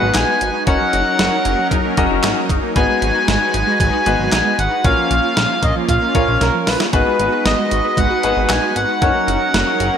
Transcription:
Already playing: G#3 B3 D#4 F#4 G#4 B4 F#5
0.02 G#1 F#3
0.15 A#1 D#4 G#5, snare, clap, closed hi-hat
0.28 G#3
0.41 G#1, closed hi-hat
0.54 D#4
0.67 F#1 F#3 C#4 D#4 F#4 A#4 C#5 F#5, kick, closed hi-hat
0.80 F#3
0.93 F#1 D#4, closed hi-hat
1.19 F#1 F#3, snare, closed hi-hat
1.32 D#4
1.45 F#1 A#3, closed hi-hat
1.59 F#3
1.71 F#1 D#4, kick, closed hi-hat
1.85 A#3
1.97 F#1 F#3 C#4 D#4 F#4 A#4 D#5, kick, closed hi-hat
2.10 F#1 D#4
2.24 G#1 A#3, snare, clap, closed hi-hat
2.37 F#3
2.49 F#1 D#4, kick, closed hi-hat
2.63 A#3
2.76 G#1 G#3 B3 D#4 F#4 G#4 B4 G#5, kick, closed hi-hat
2.89 G#3
3.02 G#1 F#3, closed hi-hat
3.15 D#4
3.28 G#1 G#3, snare, closed hi-hat
3.41 F#3
3.54 G#1 D#4, closed hi-hat
3.67 G#3
3.80 G#1 F#3 G#5, kick, closed hi-hat
3.93 D#4
4.06 G#1 G#3 B3 D#4 F#4 G#4 B4, closed hi-hat
4.19 G#1 F#3
4.32 A#1 D#4 G#5, snare, clap, closed hi-hat
4.45 G#3
4.58 G#1 F#5, closed hi-hat
4.71 D#4
4.84 A#1 A#3 C#4 F4 A#4 C#5 F5, kick, closed hi-hat
4.97 F3
5.11 A#1 F4, closed hi-hat
5.37 A#1 F3, snare, closed hi-hat
5.50 F4
5.63 A#1 A#3 D#5, kick, closed hi-hat
5.76 F3
5.89 A#1 F4 F5, kick, closed hi-hat
6.02 A#3
6.15 A#1 F3 A#3 C#4 F4 A#4 C#5, kick, closed hi-hat
6.28 A#1 F4
6.41 B1 A#3 A#4, snare, closed hi-hat
6.54 F3
6.67 A#1 F4 B4, snare, open hi-hat
6.80 A#3, snare
6.93 G#1 G#3 B3 D#4 F#4 G#4 B4, kick, closed hi-hat
7.06 B3
7.19 G#1 G#3, closed hi-hat
7.32 F#4
7.45 G#1 B3 D#5, snare, closed hi-hat
7.58 G#3
7.71 G#1 F#4, closed hi-hat
7.85 B3
7.97 G#1 G#3 F#5, kick, closed hi-hat
8.10 F#4
8.23 G#1 B3 D#4 F#4 G#4 B4, closed hi-hat
8.37 G#1 G#3
8.50 A#1 F#4 G#5, snare, clap, closed hi-hat
8.63 B3
8.76 G#1 F#5, closed hi-hat
8.89 F#4
9.02 F#1 F#3 C#4 D#4 F#4 A#4 C#5, kick, closed hi-hat
9.15 A#3
9.28 F#1 F#4, closed hi-hat
9.54 F#1 A#3, snare, closed hi-hat
9.67 F#4
9.80 F#1 C#4, closed hi-hat
9.93 A#3

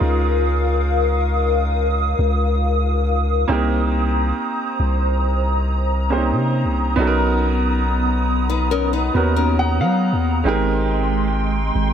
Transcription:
Already playing: G#3 C#4 D#4 F4 A#4 F5 D#6
0.01 C#2
2.19 C#2
3.48 C2 A#3 C4 D#4 G4 C5 A#5
3.52 A#4
4.80 C2
6.10 A#3 C4 C#4 G4 C5
6.18 D#4
6.32 C3
6.65 C2
6.96 B1 B3 C#4 D#4 F#4 D#6
7.01 A4
7.07 A#4
8.50 D#4 B4
8.71 C#4 A#4
8.93 D#4 B4
9.14 D#2 B3 C#4 D#4 F#4 A#4
9.36 C#4 A#4
9.59 F#5
9.80 F#3 F5
10.13 D#2
10.44 G#1 G#3 C4 D#4 G4 G5 C6
10.49 A#4
11.75 G#1

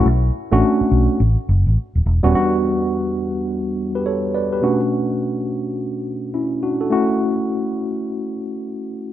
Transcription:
0.06 B1
0.52 A1 A3 C#4 D4 F#4
0.81 muted fingered electric bass stroke
0.91 B1
1.20 A1
1.49 F#1
1.67 A1
1.95 D#1
2.06 E1
2.23 D#1 G3 B3 C#4 F#4
2.33 E2 G3 B3 D4 F#4
3.95 G4 B4
4.06 A4 C#5
4.34 B4 D5
4.52 G4 B4
4.62 B2 A3 C#4 D4 F#4
6.34 C#4 E4
6.63 D4 F#4
6.81 F#4 A4
6.90 A3 C#4 E4 F#4

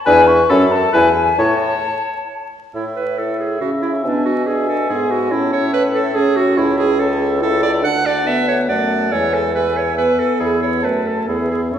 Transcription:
0.05 E2 D4 B4 G#5
0.27 C#6
0.49 F#2 C#4 A4 B5
0.72 A5
0.93 E2 E4 B4 G#5
1.16 G#5
1.38 A2 E4 C#5 A5
2.74 A2 E4 E5
2.96 B4
3.18 E4 A4 E5
3.39 G#4
3.61 C#3 C#4 F#4
3.82 E4
4.03 B2 B3 D4 E5 G#5
4.25 F#4
4.46 D4 G#4 E5 G#5
4.68 A4
4.89 G#2 B3 G#4
5.11 F#4
5.31 A2 C#4 E4 E5 A5
5.53 C#5
5.73 B4
5.94 A4
6.15 C#4 G#4
6.36 F#4
6.56 C#2 E4 E5 A5
6.78 G#4
6.99 A4 E5 A5
7.41 E4 A4 E5 A5
7.63 D5
7.83 D2 D4 F#5 A5
8.06 D5
8.25 B3 E5
8.48 C#5
8.69 F#2 A3 D5 F#5 A5
9.11 E2 G#3 C#5 E5 G#5
9.33 A4
9.54 B4 E5 G#5
9.77 C#5
9.96 B3 B4 E5 G#5
10.19 A4
10.39 E2 G#4 E5 B5
10.62 C#5
10.82 F#2 A3 B4 A5
11.07 A4
11.28 E2 B3 G#4 E5 B5
11.51 G#4
11.71 A2 C#4 A4 E5 C#6

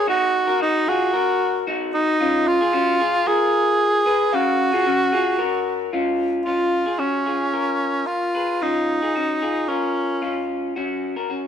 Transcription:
0.07 D#4 F#4
0.47 F#4 A#4
0.60 D#4 F#4
0.87 F4 F#4 G#4
1.14 F#4 A#4
1.67 D#4 F#4
1.94 D#4
2.20 C#4 F4
2.48 F4
2.61 F4 G#4
2.73 C#4 F#4
3.00 F4 G#4
3.26 F4 G#4 A#4
4.06 G#4 B4
4.33 C#4 F#4 F5
4.73 F4 G#4
4.86 C#4 F#4
5.12 F4 G#4
5.39 F#4 A#4
5.93 C#4 F4
6.45 C#4 F4
6.86 F4 G#4
6.99 C#4 F#4
7.26 F4 G#4
7.54 F4 A#4
8.06 F4
8.35 G#4 B4
8.62 C#4 D#4 F4
9.02 F4 G#4
9.15 C#4 F#4
9.42 F4 G#4
9.68 C#4 F4 A#4
10.22 C#4 F4
10.76 C#4 F#4
11.16 F#4 A#4
11.30 C#4 F#4

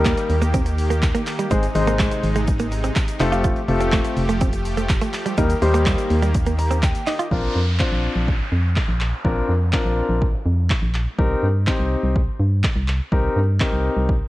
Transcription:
Already playing: D#2 D#3 G3 A#3 D#4 G4 A#4
0.05 A#3, kick, clap, closed hi-hat, shaker
0.18 muted clean electric guitar stroke, closed hi-hat, shaker
0.30 D#2, open hi-hat, shaker
0.42 A#3, closed hi-hat, shaker
0.54 C4, kick, closed hi-hat, shaker
0.66 muted clean electric guitar stroke, closed hi-hat, shaker
0.78 open hi-hat, shaker
0.90 A#3, closed hi-hat, shaker
1.02 kick, clap, closed hi-hat, shaker
1.14 A#3, closed hi-hat, shaker
1.26 muted clean electric guitar stroke, clap, open hi-hat, shaker
1.39 G3, closed hi-hat, shaker
1.51 G#1 C3 G#3 C4 D#4 G#4 C5, kick, closed hi-hat, shaker
1.63 closed hi-hat, shaker
1.75 G#1 G#3 C4 D#4 G#4 C5, muted clean electric guitar stroke, open hi-hat, shaker
1.87 A#3, closed hi-hat, shaker
1.99 G#3, kick, clap, closed hi-hat, shaker
2.11 muted clean electric guitar stroke, closed hi-hat, shaker
2.23 G#1, open hi-hat, shaker
2.35 G#3, closed hi-hat, shaker
2.47 kick, closed hi-hat, shaker
2.59 A#3, closed hi-hat, shaker
2.71 muted clean electric guitar stroke, open hi-hat, shaker
2.84 C4, closed hi-hat, shaker
2.96 muted clean electric guitar stroke, kick, clap, closed hi-hat, shaker
3.08 closed hi-hat, shaker
3.20 F1 F3 A3 C4 D#4 F4 G4 A4, clap, open hi-hat, shaker
3.32 F4, closed hi-hat, shaker
3.44 F4, kick, closed hi-hat, shaker
3.56 closed hi-hat, shaker
3.68 F1 A3 C4 F4 G4 A4, muted clean electric guitar stroke, open hi-hat, shaker
3.81 C4, closed hi-hat, shaker
3.92 A3, kick, clap, closed hi-hat, shaker
4.05 muted clean electric guitar stroke, closed hi-hat, shaker
4.17 F1, open hi-hat, shaker
4.29 A3, closed hi-hat, shaker
4.41 C4, kick, closed hi-hat, shaker
4.53 muted clean electric guitar stroke, closed hi-hat, shaker
4.65 open hi-hat, shaker
4.77 A3, closed hi-hat, shaker
4.89 kick, clap, closed hi-hat, shaker
5.01 A3, closed hi-hat, shaker
5.13 muted clean electric guitar stroke, clap, open hi-hat, shaker
5.26 G3, closed hi-hat, shaker
5.38 D#2 D#3 G3 A#3 D#4 G4 A#4, kick, closed hi-hat, shaker
5.50 closed hi-hat, shaker
5.62 D#2 G3 A#3 D#4 G4 C5, muted clean electric guitar stroke, open hi-hat, shaker
5.74 A#3, closed hi-hat, shaker
5.86 G3, kick, clap, closed hi-hat, shaker
5.98 muted clean electric guitar stroke, closed hi-hat, shaker
6.10 D#2, open hi-hat, shaker
6.22 G3, closed hi-hat, shaker
6.34 kick, closed hi-hat, shaker
6.46 A#3, closed hi-hat, shaker
6.59 A#5, muted clean electric guitar stroke, open hi-hat, shaker
6.71 C4, closed hi-hat, shaker
6.83 G5, muted clean electric guitar stroke, kick, clap, closed hi-hat, shaker
6.95 closed hi-hat, shaker
7.07 D#4 D#5, clap, open hi-hat, shaker
7.19 F4, closed hi-hat, shaker
7.31 A#1 C4 D4 F4 A#4, kick, downlifter
7.56 F2
7.79 C4 D4 F4 C5, kick, clap
7.92 A#1
8.16 A#1
8.28 kick
8.52 F2
8.77 kick, clap
8.89 A#1
9.01 clap
9.25 A#1 C4 D4 F4 A#4, kick
9.49 F2
9.73 C4 D4 F4 A#4, kick, clap
9.85 A#1
10.10 A#1
10.22 kick
10.46 F2
10.70 kick, clap
10.82 A#1
10.94 clap
11.18 C2 C4 D#4 G4 A#4, kick
11.43 G2
11.67 C4 D#4 G4 C5, kick, clap
11.79 C2
12.03 C2
12.16 kick
12.39 G2
12.64 kick, clap
12.76 C2
12.88 clap
13.12 C2 C4 D#4 G4 A#4, kick
13.36 G2
13.60 C4 D#4 G4 A#4, kick, clap
13.73 C2
13.97 C2
14.09 kick

